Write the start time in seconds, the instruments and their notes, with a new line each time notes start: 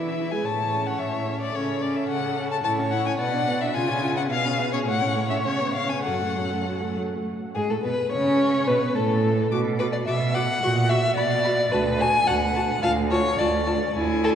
Already playing: cello E3, viola E4, violin B4 E5
0.31 cello G#3, viola G#4, violin G#5
0.44 cello A2, violin C#5 A5
0.73 viola C#4
0.86 violin F#5
0.99 cello A2, violin E5
1.28 viola C#4
1.41 violin D5
1.54 cello C#3, viola C#4, violin A4 C#5
1.82 viola C#4, violin D5
1.96 violin E5
2.09 cello C#3, violin F#5
2.37 viola C#4
2.51 violin A5
2.64 cello A2, viola E4, violin C#5 A5
2.79 viola C#4
2.91 viola E4, violin F#5
3.06 viola C#4, violin G#5
3.18 cello B2, viola B3, violin D5 F#5
3.34 viola D4
3.48 viola B3
3.61 viola D4, violin E5
3.75 cello C#3, violin F4 G#5, viola F4
3.89 viola C#4
4.03 viola F4
4.16 viola C#4, violin F#5
4.30 cello B2, viola B3, violin G#4 F5
4.45 viola C#4
4.59 viola B3
4.73 viola C#4, violin C#5
4.86 cello A2, viola A3, violin C#5 F#5
5.02 viola C#4
5.16 viola A3
5.30 viola C#4, violin E5
5.45 cello C#3, viola C#4, violin C#5
5.60 viola B3
5.74 viola C#4, violin F5
5.89 viola B3, violin G#5
6.04 cello F#2, viola F#3, violin A4 F#5
6.21 viola A3
6.36 viola F#3
6.51 viola A3
6.67 viola F#3
6.82 viola A3
6.97 viola F#3
7.13 viola A3
7.55 cello G#2, viola G#3, violin G#4
7.70 cello A2, viola A3, violin A4
7.83 cello B2, viola B3, violin B4
8.12 cello C#3, viola C#4, violin C#5
8.67 cello B2, viola B3, violin B4
8.95 cello A2, viola A3, violin A4
9.51 cello B2, viola F#4, violin D6
9.79 viola F#4, violin B4 D6
9.92 violin D5
10.06 cello B2, viola F#4, violin E5 D6
10.34 viola F#4, violin F#5 D6
10.63 cello A#2, viola F#4, violin C#6
10.89 viola F#4, violin E5 C#6
11.16 cello B2, viola F#4, violin D5 B5
11.44 viola F#4, violin B5
11.72 cello D2, viola F#4, violin B4 A5
12.00 viola F#4, violin G#5 A5
12.27 cello D2, viola F#4, violin F#5 A5
12.55 viola F#4, violin A5
12.82 cello D2, viola F4, violin F5 A5
13.10 viola F4, violin C#5 A5
13.38 cello D2, viola F4, violin D5 A5
13.67 viola F4, violin A5
13.95 cello D2, viola E4, violin G#5
14.24 violin A4